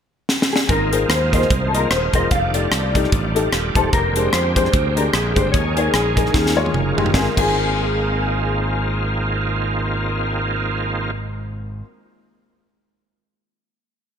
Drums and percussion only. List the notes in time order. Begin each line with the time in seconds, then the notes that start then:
0.29 snare
0.42 snare
0.56 snare
0.69 kick, closed hi-hat
0.93 closed hi-hat
1.10 cross-stick, closed hi-hat
1.33 kick, cross-stick, closed hi-hat
1.42 cross-stick
1.50 kick, closed hi-hat
1.75 closed hi-hat
1.91 cross-stick, closed hi-hat
2.13 kick, closed hi-hat
2.31 kick, closed hi-hat
2.54 closed hi-hat
2.72 cross-stick, closed hi-hat
2.95 kick, closed hi-hat
3.04 cross-stick
3.12 kick, closed hi-hat
3.36 closed hi-hat
3.53 cross-stick, closed hi-hat
3.75 kick, closed hi-hat
3.93 kick, closed hi-hat
4.16 closed hi-hat
4.33 cross-stick, closed hi-hat
4.56 kick, cross-stick, closed hi-hat
4.65 cross-stick
4.73 kick, closed hi-hat
4.97 closed hi-hat
5.14 cross-stick, closed hi-hat
5.36 kick, closed hi-hat
5.54 kick, closed hi-hat
5.77 closed hi-hat
5.94 cross-stick, closed hi-hat
6.17 kick, cross-stick, closed hi-hat
6.26 cross-stick
6.34 kick, snare
6.46 snare
6.66 high tom
6.74 mid tom
6.98 floor tom
7.06 floor tom
7.14 kick, snare
7.37 kick, crash